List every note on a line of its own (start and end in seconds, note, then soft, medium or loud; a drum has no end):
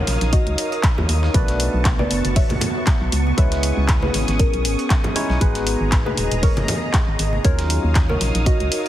0.00 0.55 F#3 medium
0.00 0.55 C#4 medium
0.00 0.55 D#4 medium
0.00 1.34 D#4 medium
0.00 0.56 F4 medium
0.00 0.13 G#4 loud
0.00 0.26 A#4 medium
0.00 0.56 A#4 medium
0.00 1.34 A#4 medium
0.00 0.26 C#5 loud
0.00 1.32 C#5 medium
0.00 0.13 D#5 medium
0.00 1.32 F5 medium
0.00 1.32 D#6 medium
0.07 0.18 A#1 medium
0.07 snare medium
0.07 closed hi-hat medium
0.07 open hi-hat medium
0.21 0.40 A#1 loud
0.21 snare soft
0.21 closed hi-hat medium
0.33 1.25 F#4 medium
0.33 1.25 D#5 loud
0.33 kick loud
0.33 closed hi-hat medium
0.47 0.55 C#2 medium
0.47 closed hi-hat soft
0.58 closed hi-hat medium
0.58 open hi-hat loud
0.72 closed hi-hat soft
0.83 kick loud
0.83 snare loud
0.83 clap loud
0.83 closed hi-hat medium
0.98 1.06 D#2 loud
0.98 low conga medium
1.09 1.29 D#2 medium
1.09 closed hi-hat medium
1.09 open hi-hat medium
1.23 snare medium
1.34 1.69 B1 loud
1.34 2.58 A3 medium
1.34 2.59 B3 medium
1.34 3.82 B3 loud
1.34 7.41 B3 medium
1.34 2.59 D4 medium
1.34 2.59 F#4 medium
1.34 1.66 B4 medium
1.34 2.59 B4 medium
1.34 1.66 D5 loud
1.34 3.11 A5 medium
1.34 5.37 C#6 medium
1.34 kick loud
1.34 closed hi-hat medium
1.48 snare soft
1.48 closed hi-hat medium
1.54 4.05 F#4 medium
1.60 closed hi-hat medium
1.60 open hi-hat loud
1.74 2.06 B1 medium
1.85 kick loud
1.85 snare loud
1.85 clap loud
1.85 closed hi-hat medium
1.99 2.30 B4 medium
1.99 2.30 D5 loud
1.99 high conga loud
2.11 2.21 F#1 medium
2.11 closed hi-hat medium
2.11 open hi-hat medium
2.25 2.44 F#1 loud
2.25 closed hi-hat medium
2.25 closed hi-hat soft
2.36 3.29 C#5 medium
2.36 3.29 E5 loud
2.36 kick loud
2.36 closed hi-hat medium
2.36 open hi-hat medium
2.50 2.59 A1 medium
2.50 closed hi-hat soft
2.50 high conga medium
2.50 low conga medium
2.61 closed hi-hat medium
2.61 open hi-hat loud
2.61 low conga loud
2.87 kick loud
2.87 snare loud
2.87 clap loud
2.87 closed hi-hat medium
3.01 3.10 B1 loud
3.12 3.32 C#2 loud
3.12 6.23 C#4 medium
3.12 5.39 D#6 medium
3.12 closed hi-hat medium
3.12 open hi-hat loud
3.27 high conga medium
3.37 3.72 C#2 loud
3.37 4.62 G#3 medium
3.37 4.62 B3 medium
3.37 4.62 C#4 medium
3.37 4.62 E4 medium
3.37 4.62 B4 medium
3.37 3.70 C#5 medium
3.37 3.70 E5 loud
3.37 kick loud
3.37 closed hi-hat medium
3.52 snare medium
3.52 closed hi-hat medium
3.58 8.26 G#4 medium
3.63 closed hi-hat medium
3.63 open hi-hat loud
3.77 4.10 C#2 medium
3.88 kick loud
3.88 snare loud
3.88 clap loud
3.88 closed hi-hat medium
4.02 4.33 G#4 medium
4.02 4.33 B4 loud
4.02 high conga loud
4.14 4.25 G#1 medium
4.14 snare medium
4.14 closed hi-hat medium
4.14 open hi-hat loud
4.28 4.47 G#1 medium
4.28 snare soft
4.28 closed hi-hat medium
4.39 5.32 C#4 medium
4.39 5.32 A#4 medium
4.39 kick loud
4.39 closed hi-hat medium
4.54 4.66 B1 loud
4.54 closed hi-hat soft
4.65 4.76 G#1 loud
4.65 closed hi-hat medium
4.65 open hi-hat loud
4.79 closed hi-hat soft
4.90 kick loud
4.90 snare loud
4.90 clap loud
4.90 closed hi-hat medium
5.04 closed hi-hat soft
5.04 low conga loud
5.16 5.38 G#3 medium
5.16 5.38 C#4 medium
5.16 5.38 D#4 medium
5.16 5.39 E4 medium
5.16 5.39 C#5 loud
5.16 closed hi-hat medium
5.16 open hi-hat loud
5.30 5.39 B1 loud
5.30 snare medium
5.41 5.75 G#1 loud
5.41 6.65 G#3 medium
5.41 6.65 B3 medium
5.41 6.66 D#4 medium
5.41 6.66 F#4 medium
5.41 5.73 G#4 medium
5.41 7.43 G#4 medium
5.41 5.73 B4 loud
5.41 6.66 B4 medium
5.41 7.43 A#5 loud
5.41 kick loud
5.41 closed hi-hat medium
5.55 snare soft
5.55 closed hi-hat medium
5.65 8.26 D#5 medium
5.65 closed hi-hat medium
5.65 open hi-hat loud
5.81 6.13 G#1 medium
5.92 kick loud
5.92 snare loud
5.92 clap loud
5.92 closed hi-hat medium
6.06 6.37 G#4 medium
6.06 6.37 B4 loud
6.06 high conga medium
6.17 6.28 D#1 medium
6.17 closed hi-hat medium
6.17 open hi-hat medium
6.31 6.50 D#1 medium
6.31 closed hi-hat soft
6.31 closed hi-hat medium
6.43 7.35 A#4 medium
6.43 7.35 C#5 loud
6.43 kick loud
6.43 closed hi-hat medium
6.43 open hi-hat medium
6.57 6.66 F#1 loud
6.57 closed hi-hat soft
6.57 high conga medium
6.57 low conga medium
6.68 closed hi-hat medium
6.68 open hi-hat loud
6.68 low conga medium
6.94 kick loud
6.94 snare loud
6.94 clap loud
6.94 closed hi-hat medium
7.08 7.17 G#1 loud
7.19 7.39 G#1 medium
7.19 closed hi-hat medium
7.19 open hi-hat loud
7.33 high conga medium
7.44 7.79 D#2 loud
7.44 8.69 F#3 medium
7.44 8.69 C#4 medium
7.44 8.88 D#4 loud
7.44 8.69 D#4 medium
7.44 8.69 F4 medium
7.44 7.76 A#4 medium
7.44 8.69 A#4 medium
7.44 7.76 C#5 loud
7.44 8.88 C#5 medium
7.44 8.88 F5 medium
7.44 8.88 D#6 medium
7.44 kick loud
7.44 closed hi-hat medium
7.59 snare medium
7.59 closed hi-hat medium
7.70 closed hi-hat medium
7.70 open hi-hat loud
7.84 8.17 D#2 loud
7.84 8.88 A#4 medium
7.95 kick loud
7.95 snare loud
7.95 clap loud
7.95 closed hi-hat medium
8.09 8.40 A#4 medium
8.09 8.40 C#5 loud
8.09 high conga medium
8.21 8.32 A#1 medium
8.21 snare medium
8.21 closed hi-hat medium
8.21 open hi-hat medium
8.35 8.54 A#1 medium
8.35 snare soft
8.35 closed hi-hat medium
8.46 8.88 F#4 medium
8.46 8.88 D#5 loud
8.46 kick loud
8.46 closed hi-hat medium
8.60 8.69 C#2 loud
8.60 closed hi-hat soft
8.72 closed hi-hat medium
8.72 open hi-hat loud